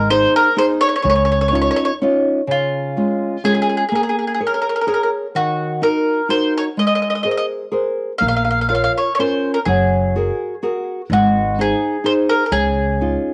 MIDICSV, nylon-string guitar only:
0, 0, Header, 1, 2, 480
1, 0, Start_track
1, 0, Key_signature, -5, "major"
1, 0, Tempo, 477707
1, 1051, Time_signature, 3, 2, 24, 8
1, 13400, End_track
2, 0, Start_track
2, 0, Title_t, "Nylon-string guitar"
2, 0, Program_c, 0, 24
2, 103, Note_on_c, 0, 63, 50
2, 112, Note_on_c, 0, 68, 35
2, 119, Note_on_c, 0, 72, 51
2, 482, Note_off_c, 0, 63, 0
2, 487, Note_off_c, 0, 68, 0
2, 492, Note_off_c, 0, 72, 0
2, 568, Note_on_c, 0, 63, 45
2, 573, Note_on_c, 0, 68, 49
2, 581, Note_on_c, 0, 72, 52
2, 951, Note_off_c, 0, 63, 0
2, 954, Note_off_c, 0, 68, 0
2, 958, Note_off_c, 0, 72, 0
2, 1040, Note_on_c, 0, 49, 58
2, 1511, Note_off_c, 0, 49, 0
2, 1515, Note_on_c, 0, 61, 44
2, 1525, Note_on_c, 0, 63, 40
2, 1535, Note_on_c, 0, 65, 49
2, 1910, Note_off_c, 0, 61, 0
2, 1916, Note_off_c, 0, 63, 0
2, 1922, Note_off_c, 0, 65, 0
2, 2025, Note_on_c, 0, 61, 53
2, 2029, Note_on_c, 0, 63, 43
2, 2039, Note_on_c, 0, 65, 57
2, 2412, Note_off_c, 0, 61, 0
2, 2412, Note_off_c, 0, 63, 0
2, 2420, Note_off_c, 0, 65, 0
2, 2484, Note_on_c, 0, 49, 58
2, 2963, Note_off_c, 0, 49, 0
2, 2982, Note_on_c, 0, 56, 35
2, 2989, Note_on_c, 0, 61, 36
2, 2991, Note_on_c, 0, 65, 39
2, 3372, Note_off_c, 0, 56, 0
2, 3376, Note_off_c, 0, 65, 0
2, 3377, Note_off_c, 0, 61, 0
2, 3455, Note_on_c, 0, 56, 47
2, 3458, Note_on_c, 0, 61, 42
2, 3463, Note_on_c, 0, 65, 53
2, 3848, Note_off_c, 0, 56, 0
2, 3849, Note_off_c, 0, 61, 0
2, 3853, Note_off_c, 0, 65, 0
2, 3935, Note_on_c, 0, 58, 49
2, 4409, Note_off_c, 0, 58, 0
2, 4423, Note_on_c, 0, 68, 43
2, 4428, Note_on_c, 0, 73, 49
2, 4431, Note_on_c, 0, 70, 37
2, 4808, Note_off_c, 0, 68, 0
2, 4810, Note_off_c, 0, 73, 0
2, 4813, Note_off_c, 0, 70, 0
2, 4892, Note_on_c, 0, 68, 44
2, 4899, Note_on_c, 0, 70, 46
2, 4906, Note_on_c, 0, 73, 51
2, 5279, Note_off_c, 0, 68, 0
2, 5281, Note_off_c, 0, 70, 0
2, 5287, Note_off_c, 0, 73, 0
2, 5376, Note_on_c, 0, 51, 60
2, 5841, Note_off_c, 0, 51, 0
2, 5846, Note_on_c, 0, 63, 45
2, 5852, Note_on_c, 0, 70, 46
2, 5853, Note_on_c, 0, 66, 35
2, 6233, Note_off_c, 0, 63, 0
2, 6234, Note_off_c, 0, 66, 0
2, 6236, Note_off_c, 0, 70, 0
2, 6319, Note_on_c, 0, 63, 47
2, 6324, Note_on_c, 0, 66, 41
2, 6330, Note_on_c, 0, 70, 45
2, 6708, Note_off_c, 0, 63, 0
2, 6712, Note_off_c, 0, 66, 0
2, 6713, Note_off_c, 0, 70, 0
2, 6804, Note_on_c, 0, 56, 53
2, 7276, Note_off_c, 0, 56, 0
2, 7280, Note_on_c, 0, 68, 35
2, 7288, Note_on_c, 0, 70, 38
2, 7289, Note_on_c, 0, 72, 38
2, 7675, Note_off_c, 0, 68, 0
2, 7675, Note_off_c, 0, 72, 0
2, 7677, Note_off_c, 0, 70, 0
2, 7753, Note_on_c, 0, 68, 45
2, 7758, Note_on_c, 0, 70, 38
2, 7767, Note_on_c, 0, 72, 48
2, 8152, Note_off_c, 0, 68, 0
2, 8156, Note_off_c, 0, 70, 0
2, 8161, Note_off_c, 0, 72, 0
2, 8244, Note_on_c, 0, 58, 52
2, 8726, Note_off_c, 0, 58, 0
2, 8736, Note_on_c, 0, 65, 42
2, 8742, Note_on_c, 0, 70, 30
2, 8747, Note_on_c, 0, 73, 37
2, 9130, Note_off_c, 0, 65, 0
2, 9134, Note_off_c, 0, 70, 0
2, 9137, Note_off_c, 0, 73, 0
2, 9237, Note_on_c, 0, 61, 51
2, 9239, Note_on_c, 0, 65, 44
2, 9246, Note_on_c, 0, 70, 39
2, 9621, Note_off_c, 0, 65, 0
2, 9623, Note_off_c, 0, 61, 0
2, 9627, Note_off_c, 0, 70, 0
2, 9726, Note_on_c, 0, 54, 53
2, 10188, Note_off_c, 0, 54, 0
2, 10207, Note_on_c, 0, 66, 34
2, 10212, Note_on_c, 0, 68, 37
2, 10222, Note_on_c, 0, 70, 39
2, 10588, Note_off_c, 0, 66, 0
2, 10592, Note_off_c, 0, 68, 0
2, 10597, Note_off_c, 0, 70, 0
2, 10679, Note_on_c, 0, 66, 44
2, 10683, Note_on_c, 0, 68, 48
2, 10686, Note_on_c, 0, 70, 54
2, 11061, Note_off_c, 0, 66, 0
2, 11062, Note_off_c, 0, 68, 0
2, 11065, Note_off_c, 0, 70, 0
2, 11172, Note_on_c, 0, 56, 56
2, 11625, Note_off_c, 0, 56, 0
2, 11643, Note_on_c, 0, 63, 43
2, 11649, Note_on_c, 0, 72, 43
2, 11658, Note_on_c, 0, 68, 38
2, 12020, Note_off_c, 0, 63, 0
2, 12024, Note_off_c, 0, 72, 0
2, 12029, Note_off_c, 0, 68, 0
2, 12098, Note_on_c, 0, 63, 49
2, 12105, Note_on_c, 0, 68, 40
2, 12115, Note_on_c, 0, 72, 47
2, 12487, Note_off_c, 0, 63, 0
2, 12491, Note_off_c, 0, 68, 0
2, 12497, Note_off_c, 0, 72, 0
2, 12575, Note_on_c, 0, 49, 55
2, 13049, Note_off_c, 0, 49, 0
2, 13070, Note_on_c, 0, 61, 41
2, 13078, Note_on_c, 0, 63, 38
2, 13079, Note_on_c, 0, 65, 49
2, 13400, Note_off_c, 0, 61, 0
2, 13400, Note_off_c, 0, 63, 0
2, 13400, Note_off_c, 0, 65, 0
2, 13400, End_track
0, 0, End_of_file